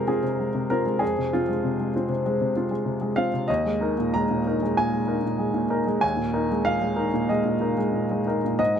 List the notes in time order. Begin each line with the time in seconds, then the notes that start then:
Already playing: F2 C3 G#3 C4 F4 G#4 A#4 C5
0.08 C4 F4 G#4
0.23 C3
0.40 G#3
0.55 C3
0.70 C4 F4 A#4
0.86 G#3
0.99 F2 G#4
1.18 C3
1.33 C4 F4
1.49 G#3
1.64 C3
1.80 G#3
1.96 C4 F4
2.09 C3
2.26 G#3
2.41 C3
2.56 C4 F4
2.71 G#3
2.85 C3
3.01 G#3
3.16 C4 F4 F5
3.34 C3
3.48 D#2 D#5
3.65 G#3
3.81 D#4 A#4
3.98 A#2
4.14 G#3 A#5
4.31 A#2
4.47 D#4 A#4
4.63 G#3
4.77 A#2 G#5
4.93 G#3
5.07 D#4 A#4
5.24 A#2
5.39 G#3
5.54 A#2
5.70 D#4 A#4
5.87 G#3
6.01 D#2 G#5
6.17 A#2
6.33 D#4 A#4
6.50 G#3
6.65 A#2 F5
6.82 G#3
6.96 D#4 A#4
7.14 A#2
7.29 G#3 D#5
7.45 A#2
7.61 D#4 A#4
7.78 G#3
7.94 A#2
8.11 G#3
8.27 D#4 A#4
8.44 A#2
8.59 G#2 D#5
8.76 G#3